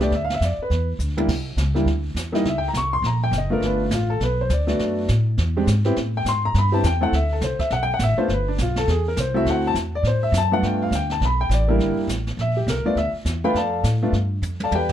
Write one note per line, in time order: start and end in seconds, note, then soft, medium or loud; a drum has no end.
0.00 0.10 C2 medium
0.00 0.11 A3 medium
0.00 0.11 B3 medium
0.00 0.11 D4 medium
0.00 0.11 G4 medium
0.00 0.13 D5 medium
0.00 snare soft
0.11 0.40 D2 medium
0.11 brush sweep soft
0.11 snare soft
0.15 0.23 E5 medium
0.24 0.32 F5 medium
0.30 snare medium
0.34 0.42 E5 medium
0.41 0.57 F2 medium
0.41 0.60 D5 medium
0.41 snare medium
0.41 hi-hat pedal soft
0.58 muted upright bass stroke soft
0.62 0.88 B4 medium
0.70 0.98 E2 medium
0.70 brush sweep soft
0.70 snare soft
0.99 1.28 D2 medium
0.99 hi-hat pedal medium
1.17 1.27 G3 medium
1.17 1.28 A#3 medium
1.17 1.28 D4 medium
1.17 1.28 E4 medium
1.17 high tom medium
1.28 1.56 C2 medium
1.28 brush sweep soft
1.28 kick medium
1.28 snare soft
1.28 crash medium
1.57 1.85 C#2 medium
1.57 snare medium
1.57 hi-hat pedal medium
1.74 1.85 G3 medium
1.74 1.86 A#3 medium
1.74 1.86 D4 medium
1.74 1.86 E4 medium
1.74 snare soft
1.85 2.14 D2 medium
1.85 brush sweep soft
1.85 snare soft
2.15 2.43 E2 medium
2.15 snare medium
2.15 hi-hat pedal medium
2.32 2.44 G3 medium
2.32 2.44 A#3 medium
2.32 2.44 D#4 medium
2.32 2.44 E4 medium
2.32 2.46 D#5 medium
2.32 snare soft
2.44 2.73 C#2 medium
2.44 brush sweep medium
2.44 snare soft
2.48 2.56 E5 medium
2.58 2.66 G5 medium
2.68 2.76 A#5 medium
2.74 3.02 C2 medium
2.74 2.93 C#6 medium
2.74 snare medium
2.74 hi-hat pedal medium
2.93 3.04 C6 loud
3.02 3.31 A#1 medium
3.02 brush sweep soft
3.02 snare soft
3.06 3.22 A#5 medium
3.24 3.34 G5 medium
3.31 3.60 F#1 medium
3.31 snare medium
3.31 hi-hat pedal medium
3.38 3.53 D#5 medium
3.50 3.89 A3 medium
3.50 3.89 B3 medium
3.50 3.82 D4 medium
3.50 3.89 F4 medium
3.50 3.63 A#4 medium
3.60 3.90 G1 medium
3.60 brush sweep soft
3.60 snare soft
3.65 3.81 B4 medium
3.83 3.93 D4 medium
3.91 4.19 A1 medium
3.91 4.10 F4 medium
3.91 snare medium
3.91 hi-hat pedal medium
4.10 4.21 A4 medium
4.20 4.49 B1 medium
4.20 4.39 B4 medium
4.20 brush sweep soft
4.20 snare soft
4.41 4.51 C5 medium
4.50 4.78 D2 medium
4.50 4.68 D5 medium
4.50 snare medium
4.50 hi-hat pedal soft
4.67 5.06 A3 medium
4.67 5.06 B3 medium
4.67 5.06 D4 medium
4.67 5.06 F#4 medium
4.67 5.06 D5 medium
4.67 snare soft
4.79 5.08 F#2 medium
4.79 brush sweep soft
4.79 snare soft
5.08 5.37 A2 medium
5.08 snare medium
5.08 hi-hat pedal medium
5.38 5.66 E2 medium
5.38 brush sweep soft
5.38 snare soft
5.57 5.66 G#3 medium
5.57 5.66 C4 medium
5.57 5.67 D4 medium
5.57 5.67 G4 medium
5.67 5.95 G#2 medium
5.67 snare medium
5.67 hi-hat pedal medium
5.84 5.95 B3 medium
5.84 5.95 C4 medium
5.84 5.95 E4 medium
5.84 5.95 G4 medium
5.84 snare soft
5.96 6.24 A2 medium
5.96 brush sweep soft
5.96 snare soft
6.17 6.27 G5 medium
6.25 6.53 G#2 medium
6.25 6.44 C6 medium
6.25 snare medium
6.25 hi-hat pedal medium
6.45 6.55 A#5 medium
6.54 6.83 G2 medium
6.54 6.74 B5 loud
6.54 brush sweep soft
6.54 snare soft
6.72 6.82 B3 medium
6.72 6.82 C4 medium
6.72 6.83 E4 medium
6.72 6.83 G4 medium
6.72 6.84 A5 medium
6.83 7.11 E2 medium
6.83 7.02 G5 medium
6.83 snare medium
6.83 hi-hat pedal medium
7.01 7.11 A3 medium
7.01 7.11 C4 medium
7.01 7.12 E4 medium
7.01 7.12 A4 medium
7.01 7.13 F#5 medium
7.12 7.41 D2 medium
7.12 7.31 E5 medium
7.12 brush sweep medium
7.12 snare soft
7.33 7.43 A4 medium
7.41 7.58 C2 medium
7.41 7.60 C5 medium
7.41 snare medium
7.41 hi-hat pedal medium
7.59 7.71 E5 medium
7.59 kick soft
7.59 snare soft
7.70 7.99 B1 medium
7.70 7.81 F#5 medium
7.70 brush sweep soft
7.70 snare soft
7.83 7.91 G5 loud
7.94 8.02 F#5 medium
7.99 8.16 A1 medium
7.99 snare medium
7.99 hi-hat pedal medium
8.03 8.19 E5 medium
8.18 8.28 A3 medium
8.18 8.28 B3 medium
8.18 8.28 D4 medium
8.18 8.29 F4 medium
8.18 8.29 C5 medium
8.18 muted upright bass stroke soft
8.28 8.57 G1 medium
8.28 brush sweep medium
8.28 snare soft
8.33 8.48 B4 medium
8.48 8.59 D4 medium
8.58 8.87 B1 medium
8.58 snare medium
8.58 hi-hat pedal medium
8.62 8.78 F4 medium
8.76 8.88 A4 medium
8.76 snare soft
8.87 9.16 E2 medium
8.87 9.06 G#4 medium
8.87 brush sweep soft
8.87 snare soft
9.08 9.18 A#4 medium
9.17 9.45 C2 medium
9.17 9.36 C5 medium
9.17 snare medium
9.17 hi-hat pedal medium
9.34 9.73 A3 medium
9.34 9.73 C4 medium
9.34 9.73 E4 medium
9.34 9.73 F#4 medium
9.34 9.47 E5 medium
9.45 9.74 D2 medium
9.45 brush sweep soft
9.45 snare soft
9.50 9.65 F#5 medium
9.67 9.73 A5 loud
9.74 10.02 E2 medium
9.74 snare medium
9.74 hi-hat pedal soft
9.95 10.05 D5 medium
10.03 10.31 A2 medium
10.03 brush sweep soft
10.03 snare soft
10.07 10.23 C5 medium
10.23 10.34 E5 medium
10.32 10.61 F#2 medium
10.32 snare medium
10.32 hi-hat pedal medium
10.38 10.53 A5 loud
10.52 10.90 G2 medium
10.52 10.90 A3 medium
10.52 10.90 B3 medium
10.52 10.91 D4 medium
10.52 10.90 F4 medium
10.52 10.64 F#5 medium
10.62 10.90 G2 medium
10.62 10.81 G5 medium
10.62 brush sweep soft
10.62 snare soft
10.83 10.93 F5 medium
10.91 11.20 D2 medium
10.91 snare medium
10.91 hi-hat pedal medium
10.95 11.11 G5 medium
11.10 11.22 A5 medium
11.10 snare soft
11.21 11.49 B1 medium
11.21 brush sweep soft
11.21 snare soft
11.25 11.41 B5 medium
11.41 11.51 G5 medium
11.49 11.78 A1 medium
11.49 snare medium
11.49 hi-hat pedal medium
11.53 11.69 D5 medium
11.68 12.07 G3 medium
11.68 12.07 A#3 medium
11.68 12.07 D4 medium
11.68 12.07 E4 medium
11.68 11.97 A#4 medium
11.79 11.96 G1 medium
11.79 brush sweep medium
11.79 snare soft
11.97 muted upright bass stroke soft
12.08 12.37 A1 medium
12.08 snare medium
12.08 hi-hat pedal medium
12.27 snare soft
12.37 12.66 A#1 medium
12.37 12.57 E5 medium
12.37 brush sweep medium
12.37 snare soft
12.57 12.68 G4 medium
12.67 12.84 C2 medium
12.67 12.86 A#4 medium
12.67 snare medium
12.67 hi-hat pedal medium
12.85 12.96 A3 medium
12.85 12.96 B3 medium
12.85 12.96 D4 medium
12.85 12.96 F4 medium
12.85 12.97 D5 medium
12.85 muted upright bass stroke soft
12.95 13.12 D2 medium
12.95 13.08 E5 medium
12.95 brush sweep soft
12.95 snare soft
13.13 muted upright bass stroke soft
13.25 13.54 E2 medium
13.25 snare medium
13.25 hi-hat pedal medium
13.44 13.54 A3 medium
13.44 13.55 B3 medium
13.44 13.54 D4 medium
13.44 13.55 F4 medium
13.44 13.55 B4 medium
13.44 13.55 F5 medium
13.44 13.56 G5 medium
13.44 13.55 B5 medium
13.54 13.83 F2 medium
13.54 13.84 D5 medium
13.54 13.84 F5 medium
13.54 13.84 A5 medium
13.54 brush sweep soft
13.54 snare soft
13.58 13.84 A4 medium
13.84 14.12 A2 medium
13.84 snare medium
13.84 hi-hat pedal medium
14.02 14.13 A3 medium
14.02 14.13 B3 medium
14.02 14.13 D4 medium
14.02 14.13 F4 medium
14.12 14.41 G2 medium
14.12 brush sweep medium
14.12 snare soft
14.42 14.71 F2 medium
14.42 hi-hat pedal medium
14.42 high tom soft
14.60 14.73 A4 medium
14.60 14.73 F5 medium
14.60 14.74 A5 medium
14.60 high tom medium
14.64 14.73 D5 medium
14.71 14.93 E2 medium
14.71 14.93 B4 medium
14.71 14.93 D5 medium
14.71 14.93 G5 medium
14.71 high tom medium
14.75 14.93 G4 medium
14.89 floor tom medium